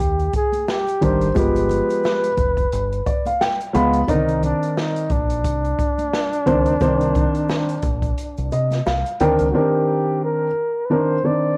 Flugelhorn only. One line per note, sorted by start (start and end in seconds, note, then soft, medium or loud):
0.00 0.35 G4 medium
0.36 0.71 G#4 medium
0.70 1.06 G4 loud
1.04 1.37 C5 loud
1.39 3.38 B4 loud
4.10 4.41 D#4 loud
4.44 4.80 D4 loud
4.78 5.14 D#4 medium
5.12 8.86 D4 loud
9.50 9.59 F#4 medium
9.57 10.24 G4 medium
10.25 10.87 A#4 medium
10.86 10.94 B4 medium
10.93 11.28 C5 loud
11.26 11.57 D5 loud